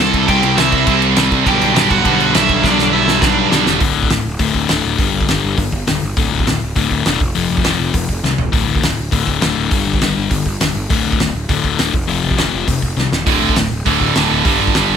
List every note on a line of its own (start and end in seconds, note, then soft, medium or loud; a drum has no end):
0.00 0.26 C2 medium
0.00 0.27 C3 medium
0.00 0.29 G3 medium
0.00 0.28 C4 loud
0.00 0.27 A4 medium
0.00 0.29 A5 loud
0.14 kick medium
0.14 crash medium
0.28 0.42 C2 medium
0.28 0.57 C3 loud
0.28 0.58 G3 loud
0.28 0.56 C4 loud
0.28 0.56 G4 medium
0.28 0.56 G5 medium
0.28 kick medium
0.28 crash medium
0.43 0.57 C2 medium
0.43 crash medium
0.57 0.85 C2 medium
0.57 0.86 C3 medium
0.57 0.87 G3 loud
0.57 0.87 C4 loud
0.57 0.71 E4 medium
0.57 0.71 E5 medium
0.57 snare loud
0.57 crash medium
0.72 1.00 E4 medium
0.72 1.00 E5 medium
0.72 kick medium
0.72 crash medium
0.87 1.14 C2 loud
0.87 1.16 C3 medium
0.87 1.17 G3 loud
0.87 1.15 C4 loud
0.87 kick medium
0.87 crash medium
1.02 crash medium
1.16 1.30 C2 medium
1.16 1.45 C3 medium
1.16 1.46 G3 loud
1.16 1.45 C4 loud
1.16 snare loud
1.16 crash medium
1.31 1.45 C2 medium
1.31 kick medium
1.31 crash medium
1.46 1.60 B1 loud
1.46 1.75 G2 loud
1.46 1.75 D3 loud
1.46 1.74 G3 loud
1.46 1.87 G4 medium
1.46 1.91 G5 loud
1.46 kick loud
1.46 crash medium
1.61 1.75 B1 medium
1.61 crash medium
1.75 1.89 B1 medium
1.75 2.03 G2 medium
1.75 2.03 D3 medium
1.75 2.04 G3 loud
1.75 snare loud
1.75 crash medium
1.90 2.04 B1 medium
1.90 2.31 F#4 medium
1.90 2.32 F#5 loud
1.90 kick medium
1.90 crash medium
2.04 2.19 B1 loud
2.04 2.34 G2 medium
2.04 2.33 D3 loud
2.04 2.32 G3 loud
2.04 kick loud
2.04 crash medium
2.20 2.33 B1 medium
2.20 crash medium
2.34 2.62 B1 medium
2.34 2.62 G2 medium
2.34 2.62 D3 loud
2.34 2.63 G3 loud
2.34 2.62 E4 medium
2.34 2.65 E5 medium
2.34 snare loud
2.34 crash medium
2.49 kick medium
2.49 crash medium
2.63 2.77 B1 loud
2.63 2.93 G2 loud
2.63 2.92 D3 loud
2.63 2.92 G3 loud
2.63 2.92 D4 medium
2.63 2.94 D5 medium
2.63 kick loud
2.63 snare medium
2.78 2.92 B1 medium
2.78 snare medium
2.93 3.20 B1 medium
2.93 3.20 G2 medium
2.93 3.21 D3 medium
2.93 3.21 G3 loud
2.93 3.20 E4 medium
2.93 3.20 E5 medium
3.08 snare medium
3.21 3.50 B1 medium
3.21 3.51 G2 medium
3.21 3.50 D3 loud
3.21 3.50 G3 loud
3.21 3.63 D4 medium
3.21 3.63 D5 medium
3.21 kick loud
3.21 snare medium
3.51 3.65 B1 medium
3.51 3.80 G2 medium
3.51 3.80 D3 loud
3.51 3.80 G3 loud
3.51 snare loud
3.66 3.80 E1 medium
3.66 snare medium
3.80 3.90 D1 medium
3.80 4.08 D2 medium
3.80 4.08 A2 medium
3.80 4.10 D3 loud
3.80 kick loud
3.80 open hi-hat medium
3.96 4.06 D1 medium
4.03 kick medium
4.09 4.20 D1 medium
4.09 4.23 D2 medium
4.09 4.23 A2 medium
4.09 snare loud
4.09 open hi-hat medium
4.25 4.35 D1 medium
4.39 4.49 D1 medium
4.39 4.68 D2 medium
4.39 4.68 A2 medium
4.39 4.69 D3 medium
4.39 kick loud
4.39 open hi-hat medium
4.54 4.64 D1 medium
4.54 kick medium
4.69 4.80 D1 medium
4.69 4.98 D2 medium
4.69 4.98 A2 medium
4.69 4.98 D3 loud
4.69 snare loud
4.69 open hi-hat medium
4.85 4.94 D1 medium
4.98 5.08 G1 medium
4.98 5.27 G2 medium
4.98 5.27 D3 medium
4.98 5.28 G3 medium
4.98 kick loud
4.98 open hi-hat medium
5.14 5.24 G1 medium
5.21 kick medium
5.28 5.39 G1 medium
5.28 5.57 G2 medium
5.28 5.57 D3 medium
5.28 5.57 G3 loud
5.28 snare loud
5.28 open hi-hat medium
5.44 5.53 G1 medium
5.57 5.67 G1 medium
5.57 5.71 G2 medium
5.57 5.71 D3 medium
5.57 kick loud
5.57 open hi-hat medium
5.72 5.82 G1 medium
5.72 kick medium
5.87 5.98 D1 medium
5.87 6.00 G2 medium
5.87 6.01 D3 medium
5.87 snare loud
5.87 open hi-hat medium
6.03 6.12 G1 medium
6.17 6.27 D1 loud
6.17 6.45 D2 medium
6.17 6.46 A2 loud
6.17 6.46 D3 loud
6.17 kick loud
6.17 open hi-hat soft
6.32 6.42 D1 medium
6.39 kick medium
6.46 6.56 D1 medium
6.46 6.60 D2 medium
6.46 6.60 A2 medium
6.46 snare loud
6.46 open hi-hat medium
6.62 6.71 D1 medium
6.75 6.86 D1 medium
6.75 7.04 D2 medium
6.75 7.05 A2 loud
6.75 7.05 D3 loud
6.75 kick loud
6.75 open hi-hat medium
6.91 7.00 D1 medium
6.91 kick medium
7.05 7.16 E1 medium
7.05 7.19 D2 loud
7.05 7.20 A2 loud
7.05 7.20 D3 medium
7.05 snare loud
7.05 open hi-hat medium
7.20 7.30 F1 medium
7.20 kick loud
7.35 7.45 F1 medium
7.35 7.63 F2 medium
7.35 7.64 C3 medium
7.35 7.64 F3 loud
7.35 open hi-hat medium
7.50 7.60 F1 medium
7.57 kick medium
7.64 7.74 F1 medium
7.64 7.93 F2 medium
7.64 7.93 C3 medium
7.64 7.93 F3 loud
7.64 snare loud
7.64 open hi-hat medium
7.79 7.89 F1 medium
7.94 8.04 F1 medium
7.94 8.07 F2 medium
7.94 8.07 C3 medium
7.94 kick loud
7.94 open hi-hat medium
8.09 8.19 F1 medium
8.09 kick medium
8.23 8.33 C2 medium
8.23 8.37 F2 medium
8.23 8.37 C3 medium
8.23 snare medium
8.38 8.48 E1 medium
8.38 floor tom medium
8.52 8.63 D1 medium
8.52 8.80 D2 medium
8.52 8.81 A2 loud
8.52 8.81 D3 loud
8.52 kick loud
8.52 open hi-hat medium
8.68 8.78 D1 medium
8.75 kick medium
8.81 8.93 D1 medium
8.81 8.95 D2 medium
8.81 8.96 A2 medium
8.81 snare loud
8.81 open hi-hat medium
8.98 9.07 D1 medium
9.11 9.22 D1 medium
9.11 9.39 D2 medium
9.11 9.40 A2 medium
9.11 9.40 D3 loud
9.11 kick loud
9.11 open hi-hat medium
9.27 9.37 D1 medium
9.27 kick medium
9.40 9.52 D1 medium
9.40 9.70 D2 medium
9.40 9.70 A2 medium
9.40 9.70 D3 medium
9.40 snare loud
9.40 open hi-hat medium
9.57 9.67 D1 medium
9.71 9.81 G1 medium
9.71 9.99 G2 medium
9.71 10.00 D3 medium
9.71 10.00 G3 loud
9.71 kick loud
9.71 open hi-hat medium
9.87 9.96 G1 medium
9.94 kick medium
10.00 10.11 G1 medium
10.00 10.29 G2 medium
10.00 10.30 D3 medium
10.00 10.30 G3 loud
10.00 snare loud
10.00 open hi-hat medium
10.17 10.26 G1 medium
10.30 10.41 G1 medium
10.30 10.44 G2 medium
10.30 10.44 D3 medium
10.30 kick loud
10.30 open hi-hat medium
10.46 10.55 G1 medium
10.46 kick medium
10.60 10.70 D1 medium
10.60 10.73 G2 medium
10.60 10.74 D3 medium
10.60 snare loud
10.60 open hi-hat medium
10.75 10.85 G1 medium
10.89 11.00 D1 medium
10.89 11.18 D2 medium
10.89 11.19 A2 loud
10.89 11.19 D3 loud
10.89 kick loud
10.89 open hi-hat medium
11.05 11.15 D1 medium
11.12 kick medium
11.19 11.29 D1 medium
11.19 11.33 D2 medium
11.19 11.33 A2 medium
11.19 snare loud
11.19 open hi-hat medium
11.35 11.44 D1 medium
11.49 11.59 D1 medium
11.49 11.77 D2 medium
11.49 11.78 A2 loud
11.49 11.78 D3 loud
11.49 kick loud
11.49 open hi-hat medium
11.64 11.74 D1 medium
11.64 kick medium
11.78 11.89 D1 medium
11.78 11.92 D2 medium
11.78 11.93 A2 loud
11.78 11.93 D3 medium
11.78 snare loud
11.78 open hi-hat medium
11.94 12.03 F1 medium
11.94 kick loud
12.07 12.18 F1 medium
12.07 12.36 F2 medium
12.07 12.36 C3 loud
12.07 12.37 F3 medium
12.07 open hi-hat medium
12.24 12.33 F1 medium
12.31 kick medium
12.37 12.48 F1 medium
12.37 12.65 F2 medium
12.37 12.65 C3 medium
12.37 12.67 F3 medium
12.37 snare loud
12.37 open hi-hat medium
12.54 12.63 F1 medium
12.66 12.77 F1 medium
12.66 12.80 F2 medium
12.66 12.80 C3 medium
12.66 kick loud
12.66 open hi-hat medium
12.82 12.92 F1 medium
12.82 kick medium
12.97 13.07 C2 medium
12.97 13.10 F2 medium
12.97 13.10 C3 medium
12.97 snare medium
13.12 13.27 E1 medium
13.12 snare medium
13.27 13.37 D1 medium
13.27 13.55 D2 medium
13.27 13.55 A2 medium
13.27 13.55 D3 medium
13.27 kick loud
13.27 open hi-hat medium
13.42 13.51 D1 medium
13.49 kick medium
13.56 13.66 D1 medium
13.56 13.69 D2 medium
13.56 13.70 A2 medium
13.56 snare loud
13.56 open hi-hat medium
13.71 13.81 D1 medium
13.86 13.96 D1 medium
13.86 14.14 D2 medium
13.86 14.15 A2 medium
13.86 14.15 D3 medium
13.86 kick loud
13.86 open hi-hat medium
14.00 14.10 D1 medium
14.00 kick medium
14.15 14.25 D1 medium
14.15 14.44 D2 medium
14.15 14.44 A2 loud
14.15 14.43 D3 loud
14.15 snare loud
14.15 open hi-hat medium
14.31 14.40 D1 medium
14.44 14.55 G1 medium
14.44 14.73 G2 medium
14.44 14.73 D3 medium
14.44 14.73 G3 loud
14.44 kick loud
14.44 open hi-hat soft
14.60 14.69 G1 medium
14.67 kick medium
14.74 14.84 G1 medium
14.74 14.97 G2 medium
14.74 14.97 D3 loud
14.74 14.97 G3 loud
14.74 snare loud
14.74 open hi-hat medium
14.89 14.97 G1 medium